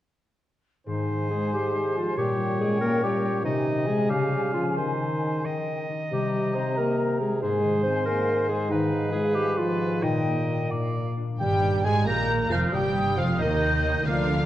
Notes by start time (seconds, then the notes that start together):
0.86 G#2 D#3 D#4 C5 G#5
1.08 D#3
1.30 G#3 D#4 G#4
1.52 G3 G4 C5
1.74 D#4
1.95 F3 F4 C5
2.17 A#2 G3 G4 C#5 G5
2.38 G3
2.59 G#3 C#4 G#4
2.81 A#3 A#4 C#5
3.02 G3 G4 A#4
3.23 C#5
3.44 C3 D#3 D#4 D#5 G#5
3.66 G#3
3.87 G#3 D#4 G#4
4.09 C#3 G3 G4 F5
4.31 C#4
4.53 F3 F4 G#4
4.76 D#3 D#4 C5
4.99 D#4
5.22 D#4 G#4
5.44 D#3 D#5 G5
5.67 D#4
5.89 D#4 G4
6.11 C3 G3 G4 A#5
6.34 G3
6.55 C4 D#4 C5
6.77 A#3 A#4
6.99 C5
7.20 G#3 G#4 A#4
7.42 G#2 G#3 G#4 C5 G#5
7.63 D#3
7.83 C4 D#4 C5
8.05 A#3 G#4 A#4
8.27 C5
8.49 G#3 G#4
8.69 G#2 D#3 D#4 B4 F5
9.12 G#3 F4 G#4
9.34 G3 G4 G#4
9.57 F3 F4 B4
9.80 G#4
10.02 A#2 D#3 D#4 D#5 G5
10.26 A#3
10.49 D#4 G4
10.71 A#2 D5 F5
10.95 A#3
11.17 D4 F4
11.40 G1 G2 D#3 G3 G4 G5
11.63 D#4
11.84 G#1 G#2 G#3 G#4 A#4 G#5
12.06 A#1 A#2 A#3 A#4 D#5 A#5 G6
12.50 F1 F2 F3 F4 G4 F5
12.72 G1 G2 C3 G3 G4 G5 D#6
12.94 A#3
13.16 F1 F2 F3 F4 G4 F5
13.39 D#2 D#3 D#4 A#4 D#5 G6
13.61 G4
13.83 A#3
14.04 D2 D3 F3 A#3 D4 F4 A#4 F5 F6
14.28 A#3